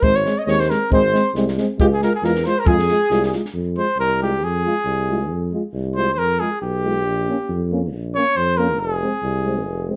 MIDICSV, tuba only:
0, 0, Header, 1, 2, 480
1, 0, Start_track
1, 0, Key_signature, -4, "minor"
1, 0, Tempo, 440205
1, 29, Time_signature, 2, 2, 24, 8
1, 5789, Tempo, 435730
1, 10915, End_track
2, 0, Start_track
2, 0, Title_t, "Tuba"
2, 0, Program_c, 0, 58
2, 11, Note_on_c, 0, 32, 81
2, 281, Note_off_c, 0, 32, 0
2, 507, Note_on_c, 0, 39, 104
2, 773, Note_off_c, 0, 39, 0
2, 982, Note_on_c, 0, 32, 88
2, 1250, Note_off_c, 0, 32, 0
2, 1465, Note_on_c, 0, 36, 87
2, 1732, Note_off_c, 0, 36, 0
2, 1951, Note_on_c, 0, 37, 84
2, 2216, Note_off_c, 0, 37, 0
2, 2418, Note_on_c, 0, 40, 89
2, 2687, Note_off_c, 0, 40, 0
2, 2899, Note_on_c, 0, 41, 94
2, 3167, Note_off_c, 0, 41, 0
2, 3380, Note_on_c, 0, 36, 92
2, 3647, Note_off_c, 0, 36, 0
2, 3857, Note_on_c, 0, 41, 80
2, 4125, Note_off_c, 0, 41, 0
2, 4331, Note_on_c, 0, 36, 83
2, 4830, Note_on_c, 0, 41, 84
2, 4846, Note_off_c, 0, 36, 0
2, 5094, Note_off_c, 0, 41, 0
2, 5290, Note_on_c, 0, 36, 85
2, 5778, Note_on_c, 0, 41, 77
2, 5795, Note_off_c, 0, 36, 0
2, 6047, Note_off_c, 0, 41, 0
2, 6252, Note_on_c, 0, 36, 83
2, 6747, Note_on_c, 0, 41, 75
2, 6763, Note_off_c, 0, 36, 0
2, 7014, Note_off_c, 0, 41, 0
2, 7226, Note_on_c, 0, 35, 77
2, 7708, Note_on_c, 0, 34, 84
2, 7725, Note_off_c, 0, 35, 0
2, 7975, Note_off_c, 0, 34, 0
2, 8191, Note_on_c, 0, 41, 86
2, 8678, Note_on_c, 0, 34, 76
2, 8694, Note_off_c, 0, 41, 0
2, 8941, Note_off_c, 0, 34, 0
2, 9156, Note_on_c, 0, 41, 86
2, 9631, Note_on_c, 0, 29, 89
2, 9648, Note_off_c, 0, 41, 0
2, 9895, Note_off_c, 0, 29, 0
2, 10105, Note_on_c, 0, 36, 87
2, 10579, Note_on_c, 0, 29, 82
2, 10596, Note_off_c, 0, 36, 0
2, 10845, Note_off_c, 0, 29, 0
2, 10915, End_track
0, 0, End_of_file